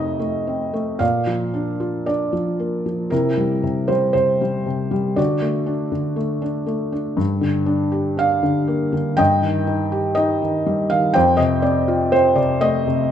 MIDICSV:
0, 0, Header, 1, 2, 480
1, 0, Start_track
1, 0, Key_signature, -2, "major"
1, 0, Tempo, 1073345
1, 448, Time_signature, 4, 2, 24, 8
1, 923, Tempo, 1034483
1, 2363, Tempo, 1011804
1, 3803, Tempo, 985222
1, 6196, End_track
2, 0, Start_track
2, 0, Title_t, "Felt piano"
2, 0, Program_c, 0, 0
2, 0, Control_c, 0, 64, 127
2, 0, Note_on_c, 0, 41, 51
2, 0, Note_on_c, 0, 48, 41
2, 0, Note_on_c, 0, 57, 39
2, 0, Note_on_c, 0, 63, 34
2, 0, Note_on_c, 0, 75, 71
2, 80, Note_off_c, 0, 57, 0
2, 87, Note_on_c, 0, 57, 41
2, 211, Note_on_c, 0, 60, 36
2, 322, Note_off_c, 0, 57, 0
2, 329, Note_on_c, 0, 57, 40
2, 430, Note_off_c, 0, 48, 0
2, 431, Note_off_c, 0, 41, 0
2, 434, Note_off_c, 0, 63, 0
2, 443, Note_off_c, 0, 60, 0
2, 443, Note_on_c, 0, 77, 69
2, 445, Note_off_c, 0, 57, 0
2, 448, Note_on_c, 0, 46, 44
2, 449, Note_on_c, 0, 74, 46
2, 454, Control_c, 0, 64, 0
2, 458, Note_off_c, 0, 75, 0
2, 544, Control_c, 0, 64, 127
2, 568, Note_on_c, 0, 53, 34
2, 688, Note_on_c, 0, 62, 40
2, 805, Note_on_c, 0, 65, 40
2, 916, Note_off_c, 0, 74, 0
2, 920, Note_off_c, 0, 62, 0
2, 923, Note_on_c, 0, 74, 60
2, 926, Note_on_c, 0, 62, 41
2, 935, Note_off_c, 0, 77, 0
2, 1038, Note_off_c, 0, 53, 0
2, 1045, Note_on_c, 0, 53, 37
2, 1169, Note_on_c, 0, 58, 39
2, 1284, Note_off_c, 0, 53, 0
2, 1291, Note_on_c, 0, 53, 34
2, 1391, Note_off_c, 0, 46, 0
2, 1392, Note_off_c, 0, 65, 0
2, 1397, Note_off_c, 0, 62, 0
2, 1404, Note_off_c, 0, 58, 0
2, 1405, Note_on_c, 0, 70, 62
2, 1408, Note_off_c, 0, 53, 0
2, 1411, Note_on_c, 0, 48, 49
2, 1414, Note_on_c, 0, 64, 43
2, 1416, Control_c, 0, 64, 0
2, 1424, Note_off_c, 0, 74, 0
2, 1483, Control_c, 0, 64, 127
2, 1531, Note_on_c, 0, 55, 38
2, 1643, Note_off_c, 0, 48, 0
2, 1650, Note_on_c, 0, 48, 42
2, 1762, Note_off_c, 0, 55, 0
2, 1764, Note_on_c, 0, 72, 60
2, 1769, Note_on_c, 0, 55, 42
2, 1779, Note_off_c, 0, 70, 0
2, 1875, Note_off_c, 0, 72, 0
2, 1882, Note_on_c, 0, 72, 64
2, 1883, Note_off_c, 0, 48, 0
2, 1890, Note_on_c, 0, 48, 35
2, 2006, Note_off_c, 0, 55, 0
2, 2013, Note_on_c, 0, 55, 38
2, 2121, Note_off_c, 0, 48, 0
2, 2127, Note_on_c, 0, 48, 38
2, 2237, Note_off_c, 0, 55, 0
2, 2244, Note_on_c, 0, 55, 45
2, 2347, Note_off_c, 0, 64, 0
2, 2357, Note_off_c, 0, 48, 0
2, 2359, Note_off_c, 0, 55, 0
2, 2361, Note_on_c, 0, 74, 60
2, 2363, Note_on_c, 0, 50, 51
2, 2368, Note_on_c, 0, 66, 44
2, 2370, Control_c, 0, 64, 0
2, 2374, Note_off_c, 0, 72, 0
2, 2452, Control_c, 0, 64, 127
2, 2481, Note_on_c, 0, 57, 40
2, 2598, Note_on_c, 0, 62, 40
2, 2712, Note_off_c, 0, 50, 0
2, 2719, Note_on_c, 0, 50, 43
2, 2827, Note_off_c, 0, 57, 0
2, 2834, Note_on_c, 0, 57, 42
2, 2949, Note_off_c, 0, 62, 0
2, 2956, Note_on_c, 0, 62, 41
2, 3066, Note_off_c, 0, 57, 0
2, 3074, Note_on_c, 0, 57, 39
2, 3189, Note_off_c, 0, 62, 0
2, 3196, Note_on_c, 0, 62, 40
2, 3304, Note_off_c, 0, 50, 0
2, 3305, Note_off_c, 0, 74, 0
2, 3308, Note_off_c, 0, 66, 0
2, 3312, Note_on_c, 0, 43, 56
2, 3313, Note_off_c, 0, 57, 0
2, 3318, Note_off_c, 0, 62, 0
2, 3331, Control_c, 0, 64, 0
2, 3427, Control_c, 0, 64, 127
2, 3428, Note_on_c, 0, 50, 43
2, 3546, Note_on_c, 0, 62, 48
2, 3668, Note_on_c, 0, 67, 45
2, 3781, Note_off_c, 0, 62, 0
2, 3788, Note_on_c, 0, 62, 39
2, 3796, Note_on_c, 0, 77, 83
2, 3906, Note_off_c, 0, 50, 0
2, 3913, Note_on_c, 0, 50, 48
2, 4033, Note_on_c, 0, 58, 41
2, 4148, Note_off_c, 0, 50, 0
2, 4155, Note_on_c, 0, 50, 46
2, 4258, Note_off_c, 0, 67, 0
2, 4259, Note_off_c, 0, 43, 0
2, 4263, Note_off_c, 0, 62, 0
2, 4272, Note_off_c, 0, 58, 0
2, 4273, Note_on_c, 0, 79, 84
2, 4277, Note_off_c, 0, 50, 0
2, 4279, Note_on_c, 0, 43, 55
2, 4281, Note_on_c, 0, 75, 68
2, 4292, Control_c, 0, 64, 0
2, 4296, Note_off_c, 0, 77, 0
2, 4387, Control_c, 0, 64, 127
2, 4395, Note_on_c, 0, 51, 43
2, 4518, Note_on_c, 0, 63, 50
2, 4639, Note_on_c, 0, 67, 49
2, 4741, Note_off_c, 0, 79, 0
2, 4743, Note_off_c, 0, 75, 0
2, 4751, Note_on_c, 0, 75, 74
2, 4754, Note_off_c, 0, 63, 0
2, 4762, Note_on_c, 0, 63, 51
2, 4876, Note_off_c, 0, 51, 0
2, 4883, Note_on_c, 0, 51, 45
2, 5002, Note_on_c, 0, 55, 46
2, 5097, Note_off_c, 0, 75, 0
2, 5115, Note_off_c, 0, 51, 0
2, 5116, Note_on_c, 0, 77, 76
2, 5122, Note_on_c, 0, 51, 45
2, 5220, Note_off_c, 0, 43, 0
2, 5221, Note_off_c, 0, 67, 0
2, 5226, Note_off_c, 0, 63, 0
2, 5232, Note_on_c, 0, 79, 84
2, 5234, Note_off_c, 0, 55, 0
2, 5238, Note_off_c, 0, 51, 0
2, 5238, Note_on_c, 0, 41, 66
2, 5241, Note_on_c, 0, 72, 58
2, 5242, Note_off_c, 0, 77, 0
2, 5248, Control_c, 0, 64, 0
2, 5330, Control_c, 0, 64, 127
2, 5346, Note_off_c, 0, 79, 0
2, 5346, Note_on_c, 0, 75, 74
2, 5356, Note_on_c, 0, 48, 46
2, 5462, Note_off_c, 0, 75, 0
2, 5469, Note_on_c, 0, 74, 68
2, 5471, Note_on_c, 0, 60, 51
2, 5595, Note_on_c, 0, 65, 49
2, 5704, Note_off_c, 0, 72, 0
2, 5706, Note_off_c, 0, 60, 0
2, 5711, Note_on_c, 0, 72, 76
2, 5714, Note_on_c, 0, 60, 47
2, 5719, Note_off_c, 0, 74, 0
2, 5819, Note_off_c, 0, 48, 0
2, 5827, Note_on_c, 0, 48, 51
2, 5827, Note_on_c, 0, 74, 61
2, 5837, Note_off_c, 0, 72, 0
2, 5944, Note_off_c, 0, 74, 0
2, 5950, Note_on_c, 0, 75, 83
2, 5951, Note_on_c, 0, 57, 51
2, 6068, Note_off_c, 0, 48, 0
2, 6076, Note_on_c, 0, 48, 50
2, 6181, Note_off_c, 0, 41, 0
2, 6183, Note_off_c, 0, 65, 0
2, 6186, Note_off_c, 0, 60, 0
2, 6192, Note_off_c, 0, 57, 0
2, 6196, Note_off_c, 0, 48, 0
2, 6196, Note_off_c, 0, 75, 0
2, 6196, End_track
0, 0, End_of_file